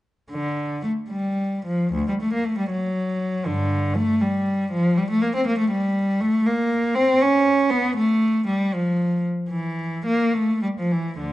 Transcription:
0.31 0.81 D3 medium
0.83 0.91 A3 medium
1.10 1.65 G3 soft
1.65 1.93 F3 medium
1.93 2.07 D2 medium
2.09 2.14 G3 medium
2.22 2.35 A3 medium
2.33 2.47 A#3 medium
2.45 2.59 A3 medium
2.58 2.72 G3 medium
2.70 3.44 F#3 medium
3.46 3.92 G2 medium
3.46 3.96 D3 medium
3.96 4.21 A3 medium
4.21 4.71 G3 medium
4.71 4.95 F3 medium
4.98 5.09 G3 medium
5.10 5.21 A3 medium
5.22 5.33 A#3 medium
5.35 5.46 C4 medium
5.47 5.57 A#3 medium
5.58 5.69 A3 medium
5.71 6.18 G3 medium
6.21 6.44 A3 medium
6.46 6.95 A#3 medium
6.95 7.20 C4 medium
7.22 7.71 C#4 medium
7.70 7.96 B3 medium
7.96 8.46 A3 medium
8.47 8.72 G3 medium
8.74 9.25 F3 medium
9.50 10.01 E3 medium
10.06 10.34 A#3 medium
10.34 10.62 A3 medium
10.63 10.68 G3 medium
10.79 10.92 F3 soft
10.92 11.21 E3 medium
11.19 11.33 D2 soft
11.19 11.33 D3 soft

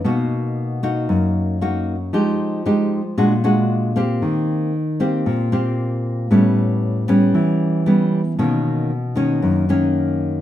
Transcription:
0.04 1.06 B2 medium
0.04 0.79 A#3 medium
0.04 0.79 D#4 soft
0.04 0.79 F#4 medium
0.83 1.57 A#3 medium
0.83 1.57 D#4 medium
0.83 1.57 F#4 medium
1.09 2.11 F#2 medium
1.61 1.95 A#3 soft
1.61 1.95 D#4 medium
1.61 1.95 F#4 medium
2.13 3.15 F3 medium
2.13 2.61 G#3 medium
2.13 2.61 D#4 medium
2.13 2.61 G4 medium
2.66 3.00 G#3 medium
2.66 3.01 D#4 medium
2.66 3.01 G4 medium
3.18 4.19 A#2 medium
3.18 3.33 G#3 medium
3.18 3.33 D4 medium
3.18 3.33 F#4 medium
3.44 3.92 G#3 medium
3.44 3.92 D4 medium
3.44 3.92 F#4 medium
3.96 4.72 A#3 medium
3.96 4.72 C4 medium
3.96 4.72 G4 medium
4.22 5.23 D#3 medium
5.00 5.48 A#3 medium
5.00 5.48 C4 medium
5.00 5.48 G4 medium
5.26 6.28 A#2 medium
5.52 6.26 A#3 medium
5.52 6.26 C4 medium
5.52 6.27 G4 medium
6.31 7.32 A2 medium
6.31 7.04 G3 soft
6.31 7.05 B3 medium
6.31 7.05 C#4 medium
7.08 7.82 G3 medium
7.08 7.82 B3 medium
7.08 7.83 C#4 medium
7.34 8.36 E3 medium
7.86 8.20 G3 medium
7.86 8.20 B3 medium
7.86 8.20 C#4 medium
8.39 9.40 B2 medium
8.39 8.90 D#3 medium
8.39 8.91 A#3 soft
8.39 8.91 C#4 medium
9.16 9.64 D#3 medium
9.16 9.64 A#3 medium
9.16 9.65 C#4 medium
9.42 10.41 F#2 medium
9.69 10.41 D#3 medium
9.69 10.41 A#3 medium
9.69 10.41 C#4 medium

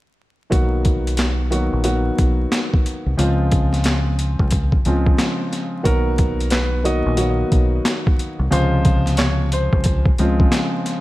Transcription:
0.50 1.69 B1 loud
0.50 1.45 D#3 medium
0.50 1.45 F#3 medium
0.50 1.45 A#3 medium
0.50 1.45 B3 medium
0.50 1.45 F#4 loud
0.50 kick loud
0.50 closed hi-hat medium
0.85 kick loud
0.85 closed hi-hat medium
1.07 closed hi-hat medium
1.17 snare loud
1.17 clap medium
1.17 closed hi-hat loud
1.50 1.82 D#3 medium
1.50 1.82 F#3 medium
1.50 1.82 A#3 medium
1.50 1.83 B3 medium
1.50 1.83 F#4 loud
1.50 closed hi-hat medium
1.73 2.09 A#1 medium
1.83 3.10 D#3 medium
1.83 3.10 F#3 medium
1.83 3.10 A#3 medium
1.83 3.10 B3 medium
1.83 3.10 F#4 loud
1.83 closed hi-hat loud
2.18 2.45 B1 medium
2.18 kick medium
2.18 closed hi-hat medium
2.52 snare loud
2.52 clap medium
2.52 closed hi-hat medium
2.74 kick loud
2.86 closed hi-hat medium
3.06 3.16 C2 medium
3.17 4.36 C#2 loud
3.17 4.74 C#3 medium
3.17 4.75 F3 medium
3.17 4.75 G#3 medium
3.17 4.75 C4 medium
3.17 4.75 F4 loud
3.17 closed hi-hat medium
3.52 kick loud
3.52 closed hi-hat medium
3.73 snare soft
3.73 closed hi-hat medium
3.84 snare loud
3.84 clap medium
3.84 closed hi-hat loud
4.19 closed hi-hat medium
4.39 4.76 C#2 medium
4.39 kick medium
4.51 kick medium
4.51 closed hi-hat loud
4.72 kick medium
4.85 5.12 C#2 medium
4.85 5.79 C#3 medium
4.85 5.80 F3 medium
4.85 5.80 G#3 medium
4.85 5.80 C4 medium
4.85 5.80 F4 medium
4.85 closed hi-hat medium
5.06 kick loud
5.18 snare loud
5.18 clap medium
5.18 closed hi-hat medium
5.52 snare soft
5.52 closed hi-hat medium
5.83 7.02 B1 loud
5.83 6.78 D#3 medium
5.83 6.78 F#3 medium
5.83 6.78 A#3 medium
5.83 6.79 B3 medium
5.83 6.79 F#4 loud
5.83 6.48 A#4 medium
5.83 kick loud
5.83 closed hi-hat loud
6.18 kick loud
6.18 closed hi-hat medium
6.40 closed hi-hat medium
6.50 6.82 B4 medium
6.50 snare loud
6.50 clap medium
6.50 closed hi-hat loud
6.84 7.15 D#3 medium
6.84 7.15 F#3 medium
6.84 7.16 A#3 medium
6.84 7.16 B3 medium
6.84 7.16 F#4 loud
6.84 7.36 D#5 medium
6.84 closed hi-hat medium
7.06 7.42 A#1 medium
7.17 8.43 D#3 loud
7.17 8.43 F#3 medium
7.17 8.43 A#3 loud
7.17 8.43 B3 medium
7.17 8.43 F#4 loud
7.17 closed hi-hat loud
7.52 7.78 B1 loud
7.52 kick loud
7.52 closed hi-hat medium
7.85 snare loud
7.85 clap medium
7.85 closed hi-hat medium
8.07 kick loud
8.19 closed hi-hat medium
8.39 8.49 C2 loud
8.50 9.69 C#2 loud
8.50 10.08 C3 medium
8.50 10.08 C#3 medium
8.50 10.08 F3 medium
8.50 10.08 G#3 medium
8.50 10.08 F4 loud
8.50 9.15 C5 loud
8.50 closed hi-hat medium
8.85 kick loud
8.85 closed hi-hat medium
9.06 snare soft
9.06 closed hi-hat medium
9.17 9.48 C#5 medium
9.17 snare loud
9.17 clap medium
9.17 closed hi-hat loud
9.52 10.03 C5 medium
9.52 closed hi-hat medium
9.73 10.09 C#2 medium
9.73 kick loud
9.84 kick medium
9.84 closed hi-hat loud
10.05 kick medium
10.18 10.45 C#2 loud
10.18 11.01 C#3 medium
10.18 11.01 F3 medium
10.18 11.01 G#3 medium
10.18 11.01 C4 medium
10.18 11.01 F4 loud
10.18 closed hi-hat medium
10.40 kick loud
10.52 snare loud
10.52 clap medium
10.52 closed hi-hat loud
10.86 snare soft
10.86 closed hi-hat medium

